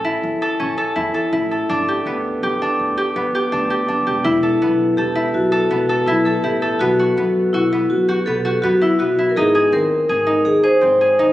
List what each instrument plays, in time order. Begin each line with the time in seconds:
Already playing: upright bass A1, harp C#4 F#4 A4
0.05 harp E4
0.23 upright bass E2
0.42 harp A4
0.60 upright bass A1, harp C#4
0.78 harp A4
0.96 upright bass E2, harp E4
1.14 harp A4
1.33 upright bass A1, harp E4
1.51 harp A4
1.69 upright bass G1, harp D4
1.88 harp G4
2.06 upright bass D2, harp B3
2.43 upright bass G1, harp G4
2.62 harp D4
2.79 upright bass D2
2.97 harp G4
3.16 upright bass G1, harp B3
3.35 harp G4
3.52 upright bass D2, harp D4
3.70 harp G4
3.88 upright bass F#1, harp D4
4.07 upright bass E1, harp G4
4.24 upright bass E1, harp E4, vibraphone E4
4.43 harp A4
4.62 upright bass B1, harp B3
4.97 upright bass E1, vibraphone G4, harp A4
5.15 harp E4
5.34 upright bass B1, vibraphone F#4
5.52 harp A4
5.71 upright bass E1, harp B3
5.89 harp A4
6.06 upright bass B1, vibraphone E4, harp E4
6.25 vibraphone A4, harp A4
6.43 upright bass A1, harp E4, vibraphone G4
6.62 harp A4
6.79 upright bass B1, harp B3, vibraphone F#4
6.99 harp F#4
7.17 upright bass F#2, harp B3
7.53 upright bass B1, vibraphone E4, harp F#4
7.73 harp B3
7.90 upright bass F#2, vibraphone F#4
8.09 harp F#4, vibraphone G4
8.26 upright bass B1, harp B3, vibraphone A4
8.45 harp F#4, vibraphone G4
8.62 upright bass F#2, harp B3, vibraphone F#4
8.81 harp E4, vibraphone E4
8.99 upright bass B1, harp B3, vibraphone F#4
9.19 harp E4
9.29 vibraphone A#4
9.36 upright bass G#1, harp D#4, vibraphone G#4
9.55 harp G#4
9.72 upright bass D#2, harp C4, vibraphone A#4
10.09 upright bass G#1, harp G#4
10.27 harp D#4
10.45 upright bass D#2, vibraphone G#4
10.63 harp G#4, vibraphone C5
10.81 upright bass G#1, harp C4
11.01 harp G#4
11.19 upright bass D#2, harp D#4